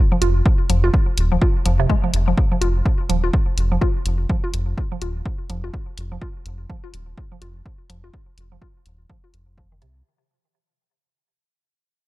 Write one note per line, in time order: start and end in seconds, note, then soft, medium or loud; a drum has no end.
0.12 0.16 F3 medium
0.22 0.42 F1 medium
0.22 0.28 F4 medium
0.22 closed hi-hat medium
0.46 kick loud
0.70 0.90 F1 loud
0.70 0.76 F3 medium
0.70 closed hi-hat medium
0.84 0.88 F4 medium
0.94 kick loud
1.18 1.38 D#1 medium
1.18 closed hi-hat medium
1.32 1.36 F3 medium
1.41 1.48 F4 medium
1.41 kick loud
1.66 1.86 F1 loud
1.66 1.72 F3 medium
1.66 closed hi-hat medium
1.80 1.86 C3 loud
1.89 1.93 G#3 loud
1.89 kick loud
2.04 2.10 F3 medium
2.14 2.34 F1 medium
2.14 closed hi-hat medium
2.28 2.30 F3 medium
2.38 kick loud
2.52 2.56 F3 medium
2.61 2.82 F1 loud
2.61 2.68 F4 medium
2.61 closed hi-hat medium
2.86 kick loud
3.09 3.30 D#1 medium
3.09 3.16 F3 medium
3.09 closed hi-hat medium
3.24 3.28 F4 medium
3.34 kick loud
3.58 3.78 F1 medium
3.58 closed hi-hat medium
3.72 3.76 F3 medium
3.81 3.88 F4 medium
3.81 kick loud
4.06 4.26 F1 medium
4.06 closed hi-hat medium
4.29 4.36 F3 medium
4.29 kick loud
4.44 4.48 F4 medium
4.54 4.74 F1 loud
4.54 closed hi-hat medium
4.78 kick medium
4.92 4.96 F3 medium
5.01 5.22 D#1 medium
5.01 5.08 F4 medium
5.01 closed hi-hat medium
5.26 kick loud
5.50 5.70 F1 loud
5.50 5.56 F3 medium
5.50 closed hi-hat medium
5.64 5.68 F4 medium
5.74 kick loud
5.98 6.18 F1 medium
5.98 closed hi-hat medium
6.12 6.16 F3 medium
6.21 6.28 F4 medium
6.21 kick loud
6.46 6.66 F1 medium
6.46 closed hi-hat medium
6.70 6.76 F3 medium
6.70 kick medium
6.84 6.88 F4 medium
6.93 7.14 D#1 medium
6.93 closed hi-hat medium
7.18 kick loud
7.32 7.36 F3 medium
7.41 7.62 F1 medium
7.41 7.48 F4 medium
7.41 closed hi-hat medium
7.66 kick loud
7.90 8.10 F1 medium
7.90 7.96 F3 medium
7.90 closed hi-hat medium
8.04 8.08 F4 medium
8.14 kick loud
8.38 8.58 F1 medium
8.38 closed hi-hat medium
8.52 8.56 F3 medium
8.62 8.68 F4 medium
8.62 kick loud
8.86 9.06 D#1 medium
8.86 closed hi-hat medium
9.10 9.16 F3 medium
9.10 kick loud
9.24 9.28 F4 medium
9.34 9.83 F1 medium
9.34 closed hi-hat medium
9.58 9.67 F3 medium
9.58 kick loud
9.72 9.75 D#3 medium
9.82 10.02 C2 medium
9.82 9.85 C3 loud
9.82 closed hi-hat medium